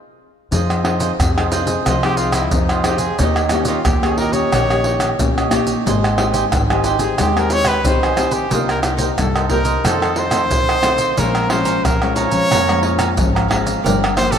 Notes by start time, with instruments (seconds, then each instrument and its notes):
0.51 upright bass F2, nylon-string guitar F3 C4 D#4 G#4, cavaquinho F4 G#4 C5 D#5, pandeiro, maracas, surdo
0.70 pandeiro, tamborim, maracas
0.84 nylon-string guitar C4 D#4 G#4, cavaquinho F4 G#4 C5 D#5, pandeiro, tamborim
1.00 cavaquinho F4 G#4 C5 D#5, pandeiro, maracas
1.19 upright bass F2, nylon-string guitar C3, pandeiro, tamborim, maracas, surdo
1.36 nylon-string guitar C4 D#4 G#4, cavaquinho G#4 C5 D#5, pandeiro, tamborim, maracas
1.51 cavaquinho F4 G#4 C5 D#5, pandeiro, maracas
1.66 nylon-string guitar C4 D#4 G#4, cavaquinho G#4 C5 D#5, pandeiro, maracas
1.86 upright bass C2, nylon-string guitar F3, cavaquinho F4 G#4 C5 D#5, pandeiro, tamborim, maracas, surdo
2.03 nylon-string guitar C4 D#4 G#4, trumpet G4, cavaquinho G#4 C5 D#5, pandeiro, tamborim, maracas
2.17 trumpet F4, cavaquinho F4 G#4 C5 D#5, pandeiro, maracas
2.32 trumpet E4, cavaquinho F4 G#4 C5 D#5, pandeiro, tamborim, maracas
2.51 upright bass F2, nylon-string guitar C3 C4 D#4 G#4, trumpet D#4, pandeiro, maracas, surdo
2.69 trumpet F4, cavaquinho C5 D#5, pandeiro, tamborim, maracas
2.73 cavaquinho G#4
2.84 nylon-string guitar C4 D#4 G#4, cavaquinho F4 G#4 C5, trumpet G4, pandeiro, tamborim, maracas
2.88 cavaquinho D#5
2.98 trumpet G#4, pandeiro, maracas
3.18 upright bass D#2, nylon-string guitar D#3 A#3 C#4 G4, cavaquinho D#4 G4 C#5 D#5, trumpet G4, pandeiro, maracas, surdo
3.36 trumpet A#3, pandeiro, tamborim, maracas
3.49 nylon-string guitar A#3 C#4 G4, trumpet C#4, cavaquinho D#4 G4, pandeiro, tamborim, maracas
3.53 cavaquinho C#5 D#5
3.65 cavaquinho D#4 G4 C#5 D#5, trumpet F4, pandeiro, maracas
3.85 upright bass D#2, nylon-string guitar A#2, trumpet G4, pandeiro, tamborim, maracas, surdo
4.02 nylon-string guitar A#3 C#4 G4, trumpet G#4, cavaquinho D#5, pandeiro, tamborim, maracas
4.06 cavaquinho G4 C#5
4.18 cavaquinho D#4 G4 C#5 D#5, trumpet A#4, pandeiro
4.32 nylon-string guitar A#3 C#4 G4, cavaquinho G4 C#5 D#5, trumpet C#5, pandeiro, maracas
4.52 upright bass A#1, nylon-string guitar D#3, cavaquinho D#4 G4 C#5 D#5, pandeiro, tamborim, maracas, surdo
4.70 nylon-string guitar A#3 C#4 G4, cavaquinho G4 C#5 D#5, pandeiro, tamborim, maracas
4.84 cavaquinho D#4 G4 C#5 D#5, pandeiro
5.00 cavaquinho D#4 G4 C#5 D#5, pandeiro, tamborim, maracas
5.19 upright bass A#1, nylon-string guitar A#2 A#3 C#4 G4, pandeiro, maracas, surdo
5.38 cavaquinho G4 C#5 D#5, pandeiro, tamborim, maracas
5.50 nylon-string guitar A#3 C#4 G4, cavaquinho D#4 G4 C#5 D#5, pandeiro, tamborim, maracas
5.67 pandeiro, maracas
5.85 upright bass G#1, nylon-string guitar G#3 C4 D#4 G4, cavaquinho C5 D#5 G#5, pandeiro, maracas, surdo
6.04 pandeiro, tamborim, maracas
6.17 nylon-string guitar C4 D#4 G4, cavaquinho G4 C5 D#5 G#5, pandeiro, tamborim
6.33 cavaquinho G4 C5 D#5 G#5, pandeiro, maracas
6.52 upright bass G#1, nylon-string guitar D#3, pandeiro, tamborim, maracas, surdo
6.70 nylon-string guitar C4 D#4 G4, cavaquinho C5 D#5 G#5, pandeiro, tamborim, maracas
6.84 cavaquinho G4 C5 D#5 G#5, pandeiro, maracas
6.99 nylon-string guitar C4 D#4 G4, trumpet G#4, cavaquinho C5 D#5 G#5, pandeiro, maracas
7.18 upright bass D#2, nylon-string guitar G#3, cavaquinho G4 C5 D#5 G#5, trumpet G4, pandeiro, tamborim, maracas, surdo
7.36 nylon-string guitar C4 D#4 G4, trumpet A#4, cavaquinho C5 D#5 G#5, pandeiro, tamborim, maracas
7.50 cavaquinho G4 C5 D#5 G#5, trumpet C#5, pandeiro, maracas
7.65 cavaquinho G4 C5 D#5 G#5, trumpet B4, pandeiro, tamborim, maracas
7.85 upright bass A#1, nylon-string guitar D#3 C4 D#4 G4, trumpet C5, pandeiro, maracas, surdo
8.03 cavaquinho C5 D#5 G#5, pandeiro, tamborim, maracas
8.16 nylon-string guitar C4 D#4 G4, cavaquinho C5 D#5 G#5, pandeiro, tamborim, maracas
8.31 trumpet G4, pandeiro, maracas
8.50 upright bass C2, nylon-string guitar C3 A#3 D#4 G4, cavaquinho D#4 A#4 C5 D#5, trumpet F4, pandeiro, maracas, surdo
8.69 trumpet A#4, pandeiro, tamborim, maracas
8.82 cavaquinho D#4 A#4 C5 D#5, pandeiro, tamborim, maracas
8.97 nylon-string guitar A#3 D#4 G4, cavaquinho D#4 A#4 C5 D#5, pandeiro, maracas
9.18 upright bass C2, nylon-string guitar G2, trumpet A4, pandeiro, tamborim, maracas, surdo
9.34 cavaquinho A#4 C5 D#5, pandeiro, tamborim, maracas
9.49 nylon-string guitar A#3 D#4 G4, cavaquinho D#4 A#4 C5 D#5, trumpet A#4, pandeiro, surdo
9.64 cavaquinho A#4 C5 D#5, pandeiro, maracas
9.84 upright bass F2, nylon-string guitar F2 D#3 A3 C4, cavaquinho F4 A4 C5 D#5, trumpet A4, pandeiro, tamborim, maracas, surdo
10.02 cavaquinho A4 C5 D#5, pandeiro, tamborim, maracas
10.16 cavaquinho F4 A4 C5 D#5, trumpet C5, pandeiro
10.31 nylon-string guitar D#3 A3 C4, cavaquinho F4 A4 C5 D#5, pandeiro, tamborim, maracas
10.51 upright bass B1, pandeiro, maracas, surdo
10.68 cavaquinho A4 C5 D#5, pandeiro, tamborim, maracas
10.82 nylon-string guitar D#3 A3 C4, cavaquinho F4 A4 C5 D#5, pandeiro, tamborim, maracas
10.98 pandeiro, maracas
11.17 upright bass A#1, nylon-string guitar A#2 F3 G#3 C#4, cavaquinho G#4 C#5 F5 A#5, trumpet A#4, pandeiro, maracas, surdo
11.35 pandeiro, tamborim, maracas
11.49 nylon-string guitar F3 G#3 C#4, cavaquinho G#4 C#5 F5 A#5, trumpet C5, pandeiro, tamborim
11.64 cavaquinho G#4 C#5 F5 A#5, pandeiro, maracas
11.85 upright bass A#1, nylon-string guitar F2, trumpet A#4, pandeiro, tamborim, maracas, surdo
12.01 nylon-string guitar F3 G#3 C#4, cavaquinho C#5 F5 A#5, pandeiro, tamborim, maracas
12.15 cavaquinho G#4 C#5 F5 A#5, trumpet C#5, pandeiro, maracas
12.31 nylon-string guitar F3 G#3 C#4, cavaquinho C#5 F5 A#5, pandeiro, maracas
12.50 upright bass F2, nylon-string guitar A#2, cavaquinho G#4 C#5 F5 A#5, pandeiro, tamborim, maracas, surdo
12.68 nylon-string guitar F3 G#3 C#4, cavaquinho C#5 F5 A#5, pandeiro, tamborim, maracas
12.83 cavaquinho G#4 C#5 F5 A#5, pandeiro
12.98 cavaquinho G#4 C#5 F5 A#5, pandeiro, tamborim, maracas
13.17 upright bass G#1, nylon-string guitar F2 F3 G#3 C#4, pandeiro, maracas, surdo
13.35 cavaquinho C#5 F5 A#5, pandeiro, tamborim, maracas
13.48 nylon-string guitar F3 G#3 C#4, cavaquinho G#4 C#5 F5 A#5, pandeiro, tamborim
13.67 pandeiro, maracas
13.83 upright bass G1, nylon-string guitar G2 F3 A#3 D4, cavaquinho G4 A#4 D5 F5, pandeiro, maracas, surdo
14.04 pandeiro, tamborim, maracas
14.16 nylon-string guitar F3 A#3 D4, cavaquinho G4 A#4 D5 F5, trumpet C5, pandeiro, tamborim, maracas
14.30 cavaquinho G4 A#4 D5 F5, trumpet A4, pandeiro, maracas